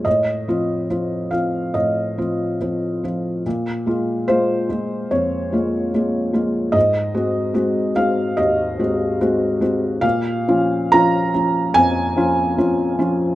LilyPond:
\new Staff \with { instrumentName = "Felt piano" } { \time 4/4 \key bes \minor \tempo 4 = 72 << { ees''4. f''8 ees''4. r8 | r4 c''4 des''2 | ees''4. f''8 ees''4. r8 | f''4 bes''4 aes''2 | } \\ { a,8 <f c' f'>8 <f c' f'>8 <f c' f'>8 a,8 <f c' f'>8 <f c' f'>8 <f c' f'>8 | bes,8 <aes bes f'>8 <aes bes f'>8 <aes bes f'>8 f,8 <aes bes f'>8 <aes bes f'>8 <aes bes f'>8 | aes,8 <aes c' ges'>8 <aes c' ges'>8 <aes c' ges'>8 ees,8 <aes c' ges'>8 <aes c' ges'>8 <aes c' ges'>8 | bes,8 <f des' f'>8 <f des' f'>8 <f des' f'>8 f,8 <f des' f'>8 <f des' f'>8 <f des' f'>8 | } >> }